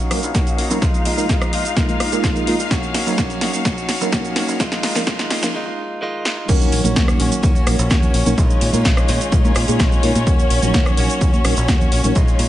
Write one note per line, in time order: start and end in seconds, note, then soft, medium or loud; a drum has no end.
0.00 0.34 C#4 soft
0.00 5.54 D#4 medium
0.00 0.34 F#4 medium
0.00 5.54 F5 medium
0.11 0.20 A#1 medium
0.11 0.18 F#3 medium
0.11 0.18 A#3 medium
0.11 0.18 C#4 medium
0.11 0.18 D#4 medium
0.11 0.19 A#4 medium
0.11 cross-stick medium
0.11 open hi-hat loud
0.23 0.32 A#1 loud
0.23 closed hi-hat medium
0.23 cabasa medium
0.34 0.53 D#2 loud
0.34 0.56 A#3 medium
0.34 0.58 C#4 loud
0.34 0.59 F#4 loud
0.34 kick loud
0.34 snare medium
0.34 closed hi-hat medium
0.34 cabasa medium
0.47 closed hi-hat soft
0.47 cabasa soft
0.57 0.68 A#1 medium
0.57 0.70 A#3 medium
0.57 0.71 C#4 medium
0.57 0.68 F#4 medium
0.57 open hi-hat loud
0.70 0.79 A#1 medium
0.70 0.77 F#3 medium
0.70 0.77 A#3 medium
0.70 0.77 C#4 medium
0.70 0.82 C#4 soft
0.70 0.77 D#4 medium
0.70 0.81 F#4 medium
0.70 0.78 A#4 medium
0.70 cabasa medium
0.81 1.00 A#1 medium
0.81 1.04 F3 medium
0.81 1.05 G#3 medium
0.81 1.06 D#4 medium
0.81 1.06 F4 loud
0.81 kick loud
0.81 snare medium
0.81 closed hi-hat medium
0.81 cabasa medium
0.94 closed hi-hat soft
0.94 cabasa soft
1.05 1.15 A#2 loud
1.05 1.27 F3 medium
1.05 1.28 G#3 medium
1.05 1.29 D#4 medium
1.05 1.29 F4 medium
1.05 open hi-hat loud
1.17 1.26 A#2 medium
1.17 1.24 G#3 medium
1.17 1.24 A#3 medium
1.17 1.25 D#4 medium
1.17 1.25 F4 medium
1.17 1.25 A#4 medium
1.17 cabasa medium
1.29 1.52 G#3 medium
1.29 1.53 D#4 medium
1.29 1.53 F4 loud
1.29 kick loud
1.29 snare medium
1.29 closed hi-hat medium
1.29 cabasa medium
1.42 cross-stick medium
1.42 closed hi-hat soft
1.42 cabasa soft
1.52 1.62 A#2 loud
1.52 1.65 F3 medium
1.52 1.65 G#3 medium
1.52 1.65 D#4 medium
1.52 1.63 F4 medium
1.52 open hi-hat loud
1.64 1.76 G#3 medium
1.64 1.76 D#4 medium
1.64 1.76 F4 medium
1.64 closed hi-hat medium
1.64 cabasa medium
1.76 1.94 A#1 medium
1.76 1.88 F3 medium
1.76 1.87 G#3 medium
1.76 1.87 A#3 medium
1.76 1.87 D#4 medium
1.76 1.88 D#4 medium
1.76 1.87 F4 medium
1.76 1.87 A#4 loud
1.76 kick loud
1.76 snare medium
1.76 closed hi-hat medium
1.76 cabasa medium
1.88 1.95 G#3 medium
1.88 2.23 G#3 soft
1.88 1.95 A#3 medium
1.88 1.95 D#4 medium
1.88 2.23 D#4 medium
1.88 2.23 F4 medium
1.88 1.96 F4 medium
1.88 1.96 A#4 medium
1.88 closed hi-hat soft
1.88 cabasa soft
2.00 2.09 A#2 medium
2.00 cross-stick medium
2.00 open hi-hat loud
2.12 2.21 A#2 loud
2.12 2.33 G#3 medium
2.12 2.33 A#3 medium
2.12 2.33 D#4 medium
2.12 2.33 F4 medium
2.12 2.33 A#4 medium
2.12 closed hi-hat medium
2.12 cabasa medium
2.23 2.45 F3 medium
2.23 2.46 G#3 medium
2.23 2.47 D#4 medium
2.23 2.48 F4 loud
2.23 kick loud
2.23 snare medium
2.23 closed hi-hat medium
2.23 cabasa medium
2.36 2.44 G#3 medium
2.36 2.45 A#3 medium
2.36 2.45 D#4 medium
2.36 2.45 F4 medium
2.36 2.45 A#4 medium
2.36 closed hi-hat soft
2.36 cabasa soft
2.46 2.57 A#2 medium
2.46 2.59 F3 medium
2.46 2.54 G#3 medium
2.46 2.60 G#3 medium
2.46 2.54 A#3 medium
2.46 2.55 D#4 medium
2.46 2.59 D#4 medium
2.46 2.55 F4 medium
2.46 2.57 F4 medium
2.46 2.55 A#4 medium
2.46 open hi-hat loud
2.59 2.68 A#2 medium
2.59 2.70 G#3 soft
2.59 2.71 D#4 medium
2.59 2.70 F4 medium
2.59 cabasa medium
2.71 2.89 D#2 loud
2.71 2.93 A#3 medium
2.71 2.94 C#4 medium
2.71 2.95 F#4 loud
2.71 kick loud
2.71 snare medium
2.71 closed hi-hat medium
2.71 cabasa medium
2.83 closed hi-hat soft
2.83 cabasa soft
2.94 3.04 A#1 loud
2.94 3.16 A#3 medium
2.94 3.18 C#4 medium
2.94 3.18 F#4 medium
2.94 snare medium
2.94 open hi-hat loud
3.06 3.15 A#1 medium
3.06 3.62 F#3 medium
3.06 3.62 A#3 medium
3.06 3.63 C#4 medium
3.06 3.63 D#4 medium
3.06 3.63 A#4 medium
3.06 cabasa medium
3.18 3.40 A#3 medium
3.18 3.42 C#4 loud
3.18 3.42 F#4 loud
3.18 kick loud
3.18 snare medium
3.18 closed hi-hat medium
3.18 cabasa medium
3.30 closed hi-hat soft
3.30 cabasa soft
3.41 3.51 A#1 loud
3.41 3.54 A#3 medium
3.41 3.54 C#4 medium
3.41 3.52 F#4 medium
3.41 snare medium
3.41 open hi-hat loud
3.53 3.65 C#4 soft
3.53 3.65 F#4 medium
3.53 closed hi-hat soft
3.53 cabasa medium
3.64 3.83 D#2 loud
3.64 3.77 A#3 medium
3.64 3.78 C#4 medium
3.64 3.76 F#4 medium
3.64 kick loud
3.64 snare medium
3.64 closed hi-hat medium
3.64 cabasa medium
3.77 4.12 C#4 medium
3.77 4.12 F#4 medium
3.77 cabasa soft
3.89 3.98 A#1 medium
3.89 snare medium
3.89 open hi-hat loud
4.00 4.10 A#1 loud
4.00 4.57 F#3 medium
4.00 4.57 A#3 medium
4.00 4.57 C#4 medium
4.00 4.57 D#4 medium
4.00 4.57 A#4 medium
4.00 closed hi-hat medium
4.00 cabasa medium
4.12 4.34 A#3 medium
4.12 4.36 C#4 medium
4.12 4.37 F#4 loud
4.12 kick loud
4.12 snare medium
4.12 closed hi-hat medium
4.12 cabasa medium
4.25 closed hi-hat soft
4.25 cabasa soft
4.35 4.45 A#1 medium
4.35 4.48 A#3 medium
4.35 4.49 C#4 medium
4.35 4.47 F#4 medium
4.35 snare medium
4.35 open hi-hat loud
4.48 4.57 A#1 medium
4.48 4.60 C#4 medium
4.48 4.60 F#4 medium
4.48 cabasa medium
4.59 4.82 D#3 medium
4.59 4.83 G#3 medium
4.59 4.84 D#4 loud
4.59 4.84 F4 loud
4.59 kick loud
4.59 snare medium
4.59 closed hi-hat medium
4.59 cabasa medium
4.72 snare medium
4.72 closed hi-hat soft
4.72 cabasa soft
4.83 4.93 A#2 loud
4.83 5.06 D#3 medium
4.83 5.06 G#3 medium
4.83 5.07 D#4 medium
4.83 5.07 F4 medium
4.83 snare medium
4.83 open hi-hat loud
4.95 5.04 A#2 medium
4.95 5.05 F3 medium
4.95 5.05 A#3 medium
4.95 5.05 C#4 medium
4.95 5.05 D#4 medium
4.95 5.06 A#4 medium
4.95 snare medium
4.95 cabasa medium
5.07 5.29 D#3 medium
5.07 5.30 G#3 medium
5.07 5.31 D#4 loud
5.07 5.31 F4 loud
5.07 kick loud
5.07 snare medium
5.07 closed hi-hat medium
5.07 cabasa medium
5.19 snare medium
5.19 closed hi-hat soft
5.19 cabasa soft
5.30 5.40 A#2 loud
5.30 5.43 D#3 medium
5.30 5.43 G#3 medium
5.30 5.43 D#4 medium
5.30 5.41 F4 medium
5.30 snare loud
5.30 open hi-hat loud
5.42 5.52 F3 medium
5.42 5.54 G#3 medium
5.42 5.52 A#3 medium
5.42 5.53 C#4 medium
5.42 5.53 D#4 medium
5.42 5.55 D#4 medium
5.42 5.54 F4 medium
5.42 5.53 A#4 medium
5.42 snare medium
5.42 closed hi-hat medium
5.42 cabasa medium
5.54 5.66 D#3 medium
5.54 5.67 G#3 medium
5.54 5.66 D#4 medium
5.54 5.65 F4 medium
5.66 6.01 G#3 medium
5.66 6.01 D#4 medium
5.66 6.01 F4 medium
6.01 6.24 D#3 medium
6.01 6.25 G#3 medium
6.01 6.26 D#4 loud
6.01 6.26 F4 loud
6.25 6.37 D#3 medium
6.25 6.38 G#3 medium
6.25 6.37 D#4 medium
6.25 6.36 F4 medium
6.25 snare loud
6.37 6.49 G#3 soft
6.37 6.49 D#4 medium
6.37 6.49 F4 medium
6.48 6.67 D#2 loud
6.48 6.84 D#3 medium
6.48 6.80 F#3 loud
6.48 6.80 A#3 loud
6.48 6.85 A#3 loud
6.48 12.48 C#4 medium
6.48 6.80 C#4 loud
6.48 6.84 C#4 loud
6.48 6.80 D#4 loud
6.48 6.83 F#4 loud
6.48 6.80 A#4 loud
6.48 12.48 C#5 medium
6.48 kick loud
6.48 closed hi-hat medium
6.48 tambourine medium
6.48 crash loud
6.48 cabasa medium
6.60 tambourine soft
6.60 cabasa soft
6.72 6.82 A#1 loud
6.72 open hi-hat loud
6.72 tambourine loud
6.84 6.93 A#1 medium
6.84 7.40 F#3 medium
6.84 7.40 A#3 medium
6.84 6.95 A#3 medium
6.84 7.41 C#4 medium
6.84 6.96 C#4 medium
6.84 7.41 D#4 medium
6.84 6.96 F#4 medium
6.84 7.41 A#4 medium
6.84 closed hi-hat medium
6.84 tambourine soft
6.84 high conga loud
6.84 cabasa medium
6.96 7.14 D#2 medium
6.96 7.08 D#3 medium
6.96 7.08 A#3 medium
6.96 7.08 C#4 loud
6.96 7.06 F#4 loud
6.96 kick loud
6.96 snare loud
6.96 closed hi-hat medium
6.96 tambourine medium
6.96 cabasa medium
7.07 7.19 A#3 soft
7.07 7.20 C#4 medium
7.07 7.19 F#4 medium
7.07 cross-stick medium
7.07 tambourine soft
7.07 cabasa soft
7.19 7.29 A#1 loud
7.19 7.41 D#3 medium
7.19 7.42 A#3 medium
7.19 7.43 C#4 medium
7.19 7.44 F#4 medium
7.19 open hi-hat loud
7.19 tambourine medium
7.19 high conga medium
7.32 closed hi-hat medium
7.32 tambourine soft
7.32 cabasa medium
7.42 7.61 D#2 loud
7.42 7.55 D#3 medium
7.42 7.50 F#3 medium
7.42 7.50 A#3 medium
7.42 7.56 A#3 medium
7.42 7.51 C#4 medium
7.42 7.55 C#4 medium
7.42 7.51 D#4 medium
7.42 7.54 F#4 medium
7.42 7.51 A#4 medium
7.42 kick loud
7.42 closed hi-hat medium
7.42 tambourine medium
7.42 cabasa medium
7.55 7.90 A#3 medium
7.55 7.90 C#4 medium
7.55 7.90 F#4 medium
7.55 tambourine soft
7.55 high conga medium
7.55 cabasa soft
7.66 7.76 A#1 medium
7.66 7.74 F#3 medium
7.66 7.74 A#3 medium
7.66 7.74 C#4 medium
7.66 7.74 D#4 medium
7.66 7.74 A#4 medium
7.66 cross-stick medium
7.66 open hi-hat loud
7.66 tambourine medium
7.79 7.88 A#1 loud
7.79 closed hi-hat medium
7.79 tambourine soft
7.79 cabasa medium
7.90 8.09 D#2 loud
7.90 8.12 D#3 medium
7.90 8.13 A#3 medium
7.90 8.14 C#4 loud
7.90 8.15 F#4 loud
7.90 kick loud
7.90 snare loud
7.90 closed hi-hat medium
7.90 tambourine medium
7.90 high conga medium
7.90 cabasa medium
8.02 tambourine soft
8.02 low conga medium
8.02 cabasa soft
8.13 8.23 A#1 medium
8.13 8.26 D#3 medium
8.13 8.26 A#3 medium
8.13 8.26 C#4 medium
8.13 8.24 F#4 medium
8.13 open hi-hat loud
8.13 tambourine medium
8.25 8.35 A#1 medium
8.25 8.33 F#3 medium
8.25 8.33 A#3 medium
8.25 8.37 A#3 soft
8.25 8.33 C#4 medium
8.25 8.38 C#4 medium
8.25 8.33 D#4 medium
8.25 8.37 F#4 medium
8.25 8.33 A#4 medium
8.25 closed hi-hat medium
8.25 tambourine soft
8.25 high conga medium
8.25 cabasa medium
8.37 8.56 A#1 loud
8.37 8.73 D#3 medium
8.37 8.74 G#3 medium
8.37 8.73 D#4 medium
8.37 8.71 F4 loud
8.37 kick loud
8.37 closed hi-hat medium
8.37 tambourine medium
8.37 cabasa medium
8.50 tambourine soft
8.50 cabasa soft
8.61 8.71 A#2 loud
8.61 open hi-hat loud
8.61 tambourine loud
8.73 8.82 A#2 medium
8.73 8.80 G#3 medium
8.73 8.84 G#3 medium
8.73 8.80 A#3 medium
8.73 8.80 D#4 medium
8.73 8.85 D#4 medium
8.73 8.85 F4 medium
8.73 8.80 F4 medium
8.73 8.81 A#4 medium
8.73 closed hi-hat medium
8.73 tambourine soft
8.73 high conga medium
8.73 cabasa medium
8.84 9.03 A#1 medium
8.84 9.06 D#3 medium
8.84 9.08 G#3 medium
8.84 9.08 D#4 medium
8.84 9.09 F4 loud
8.84 kick loud
8.84 snare loud
8.84 closed hi-hat medium
8.84 cabasa medium
8.97 cross-stick medium
8.97 tambourine soft
8.97 cabasa soft
9.08 9.18 A#2 loud
9.08 9.30 D#3 medium
9.08 9.31 G#3 medium
9.08 9.32 D#4 medium
9.08 9.33 F4 medium
9.08 snare soft
9.08 open hi-hat loud
9.08 tambourine medium
9.20 closed hi-hat medium
9.20 tambourine soft
9.20 cabasa medium
9.32 9.50 A#1 loud
9.32 9.44 D#3 medium
9.32 9.42 G#3 medium
9.32 9.45 G#3 medium
9.32 9.43 A#3 medium
9.32 9.43 D#4 medium
9.32 9.44 D#4 medium
9.32 9.43 F4 medium
9.32 9.42 F4 medium
9.32 9.43 A#4 loud
9.32 kick loud
9.32 closed hi-hat medium
9.32 tambourine medium
9.32 cabasa medium
9.44 9.51 G#3 medium
9.44 9.79 G#3 medium
9.44 9.51 A#3 medium
9.44 9.51 D#4 medium
9.44 9.79 D#4 medium
9.44 9.79 F4 medium
9.44 9.51 F4 medium
9.44 9.52 A#4 medium
9.44 tambourine soft
9.44 high conga loud
9.44 cabasa soft
9.55 9.65 A#2 medium
9.55 cross-stick medium
9.55 open hi-hat loud
9.55 tambourine medium
9.67 9.77 A#2 loud
9.67 9.79 G#3 medium
9.67 9.79 A#3 medium
9.67 9.79 D#4 medium
9.67 9.79 F4 medium
9.67 9.79 G#4 loud
9.67 closed hi-hat medium
9.67 tambourine soft
9.67 cabasa medium
9.79 9.98 A#1 loud
9.79 10.01 D#3 medium
9.79 10.02 G#3 medium
9.79 10.03 D#4 loud
9.79 10.04 F4 loud
9.79 kick loud
9.79 snare loud
9.79 closed hi-hat medium
9.79 tambourine soft
9.79 high conga medium
9.79 cabasa medium
9.91 tambourine soft
9.91 low conga medium
9.91 cabasa soft
10.02 10.13 A#2 medium
10.02 10.15 D#3 medium
10.02 10.10 G#3 medium
10.02 10.15 G#3 medium
10.02 10.10 A#3 medium
10.02 10.10 D#4 medium
10.02 10.15 D#4 medium
10.02 10.11 F4 medium
10.02 10.13 F4 medium
10.02 10.11 A#4 loud
10.02 open hi-hat loud
10.02 tambourine medium
10.15 10.24 A#2 medium
10.15 10.26 G#3 medium
10.15 10.27 D#4 medium
10.15 10.26 F4 medium
10.15 closed hi-hat medium
10.15 tambourine soft
10.15 high conga loud
10.15 cabasa medium
10.27 10.45 D#2 loud
10.27 10.62 A#3 medium
10.27 10.63 C#4 medium
10.27 10.61 F#4 medium
10.27 kick loud
10.27 closed hi-hat medium
10.27 tambourine medium
10.27 cabasa medium
10.39 tambourine soft
10.39 cabasa soft
10.50 10.60 A#1 loud
10.50 open hi-hat loud
10.50 tambourine medium
10.62 10.71 A#1 medium
10.62 11.18 F#3 medium
10.62 11.18 A#3 medium
10.62 11.19 C#4 medium
10.62 10.74 C#4 medium
10.62 11.19 D#4 medium
10.62 10.74 F#4 medium
10.62 11.19 A#4 medium
10.62 closed hi-hat medium
10.62 tambourine soft
10.62 high conga loud
10.62 cabasa medium
10.74 10.92 D#2 medium
10.74 10.86 A#3 medium
10.74 10.87 C#4 medium
10.74 10.85 F#4 loud
10.74 kick loud
10.74 snare loud
10.74 closed hi-hat medium
10.74 cabasa medium
10.85 10.98 C#4 soft
10.85 10.97 F#4 medium
10.85 cross-stick medium
10.85 tambourine soft
10.85 cabasa soft
10.97 11.07 A#1 loud
10.97 11.20 A#3 medium
10.97 11.21 C#4 medium
10.97 11.23 F#4 medium
10.97 open hi-hat loud
10.97 tambourine medium
11.10 closed hi-hat medium
11.10 tambourine soft
11.10 cabasa medium
11.21 11.39 D#2 loud
11.21 11.28 F#3 medium
11.21 11.33 A#3 medium
11.21 11.28 A#3 medium
11.21 11.29 C#4 medium
11.21 11.34 C#4 medium
11.21 11.29 D#4 medium
11.21 11.32 F#4 medium
11.21 11.29 A#4 medium
11.21 kick loud
11.21 closed hi-hat medium
11.21 tambourine soft
11.21 cabasa medium
11.33 11.68 C#4 medium
11.33 11.68 F#4 medium
11.33 tambourine soft
11.33 high conga loud
11.33 cabasa soft
11.44 11.54 A#1 medium
11.44 11.52 F#3 medium
11.44 11.52 A#3 medium
11.44 11.52 C#4 medium
11.44 11.52 D#4 medium
11.44 11.52 A#4 medium
11.44 cross-stick medium
11.44 open hi-hat loud
11.44 tambourine medium
11.57 11.66 A#1 loud
11.57 closed hi-hat medium
11.57 tambourine soft
11.57 cabasa medium
11.68 11.86 D#2 loud
11.68 11.90 A#3 medium
11.68 11.92 C#4 loud
11.68 11.93 F#4 loud
11.68 kick loud
11.68 snare loud
11.68 closed hi-hat medium
11.68 tambourine soft
11.68 high conga medium
11.68 cabasa medium
11.81 tambourine soft
11.81 low conga medium
11.81 cabasa soft
11.91 12.01 A#1 medium
11.91 12.04 A#3 medium
11.91 12.05 C#4 medium
11.91 12.02 F#4 medium
11.91 open hi-hat loud
11.91 tambourine loud
12.04 12.13 A#1 medium
12.04 12.11 F#3 medium
12.04 12.11 A#3 medium
12.04 12.11 C#4 medium
12.04 12.16 C#4 medium
12.04 12.11 D#4 medium
12.04 12.15 F#4 medium
12.04 12.11 A#4 medium
12.04 closed hi-hat medium
12.04 tambourine soft
12.04 high conga medium
12.04 cabasa medium
12.15 12.34 A#1 loud
12.15 12.28 D#3 medium
12.15 12.28 G#3 medium
12.15 12.28 D#4 loud
12.15 12.26 F4 loud
12.15 kick loud
12.15 closed hi-hat medium
12.15 tambourine soft
12.15 cabasa medium
12.27 12.48 G#3 soft
12.27 12.48 D#4 medium
12.27 12.48 F4 medium
12.27 tambourine soft
12.27 cabasa soft
12.39 12.48 A#2 loud
12.39 open hi-hat loud
12.39 tambourine loud